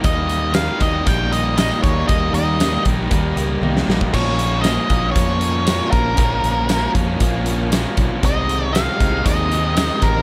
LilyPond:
<<
  \new Staff \with { instrumentName = "Lead electric guitar" } { \time 4/4 \key bes \minor \tempo 4 = 117 ees''4 f''8 ees''8 g''8 ees''8 ees''8 des''8 | ees''8 ees''4 r2 r8 | des''4 ees''4 des''4. bes'8~ | bes'4. r2 r8 |
ees''4 f''4 ees''4. bes'8 | }
  \new Staff \with { instrumentName = "Tonewheel organ" } { \time 4/4 \key bes \minor <bes g'>1~ | <bes g'>1 | <bes f' des''>1~ | <bes f' des''>1 |
<aes ees' c''>1 | }
  \new Staff \with { instrumentName = "Distorted electric guitar" } { \clef bass \time 4/4 \key bes \minor <ees g bes ees'>4 <ees g bes ees'>8 <g bes ees'>8 <ees g bes ees'>8 <g bes ees'>8 <ees g bes ees'>4 | <ees g bes ees'>4 <ees g bes ees'>8 <g bes ees'>8 <ees g bes ees'>8 <g bes ees'>8 <ees g bes ees'>4 | <bes, f bes des'>4 <bes, f bes des'>8 <f bes des'>8 <bes, f bes des'>8 <f bes des'>8 <bes, f bes des'>4 | <bes, f bes des'>4 <bes, f bes des'>8 <f bes des'>8 <bes, f bes des'>8 <f bes des'>8 <bes, f bes des'>4 |
<c ees aes ees'>4 <c ees aes ees'>8 <ees aes ees'>8 <c ees aes ees'>8 <ees aes ees'>8 <c ees aes ees'>4 | }
  \new Staff \with { instrumentName = "Distorted electric guitar" } { \clef bass \time 4/4 \key bes \minor <ees g bes ees'>4 <ees g bes ees'>8 <g bes ees'>8 <ees g bes ees'>4 <ees g bes ees'>8 <g bes ees'>8 | <ees g bes ees'>4 <ees g bes ees'>8 <g bes ees'>8 <ees g bes ees'>4 <ees g bes ees'>8 <g bes ees'>8 | <bes, f bes des'>4 <bes, f bes des'>8 <f bes des'>8 <bes, f bes des'>4 <bes, f bes des'>8 <f bes des'>8 | <bes, f bes des'>4 <bes, f bes des'>8 <f bes des'>8 <bes, f bes des'>4 <bes, f bes des'>8 <f bes des'>8 |
<c ees aes ees'>4 <c ees aes ees'>8 <ees aes ees'>8 <c ees aes ees'>4 <c ees aes ees'>8 <ees aes ees'>8 | }
  \new Staff \with { instrumentName = "Fingered electric bass" } { \clef bass \time 4/4 \key bes \minor ees,4. ees,8 bes,,4. ees,8 | ees,8 ees,4 bes,,8 ees,8 des,8 c,8 bes,,8 | bes,,4. bes,,8 f,4. bes,,8 | bes,,8 bes,,4 f,8 bes,,4. ces,16 r16 |
c,4. c,8 ees,4. a,,8 | }
  \new DrumStaff \with { instrumentName = "Drums" } \drummode { \time 4/4 <hh bd>8 hh8 <hh sn tamb>8 <hh bd>8 <hh bd>8 hh8 <hh sn tamb>8 <hh bd>8 | <hh bd>8 hh8 <hh sn tamb>8 <hh bd>8 <hh bd>8 hh8 tommh16 sn16 sn16 bd16 | <cymc bd>8 hh8 <hh sn tamb>8 <hh bd>8 <hh bd>8 hh8 <hh sn tamb>8 <hh bd>8 | <hh bd>8 hh8 <hh sn tamb>8 <hh bd>8 <hh bd>8 hh8 <hh sn tamb>8 <hh bd>8 |
<hh bd>8 hh8 <hh sn tamb>8 <hh bd>8 <hh bd>8 hh8 <hh sn tamb>8 <hh bd>8 | }
>>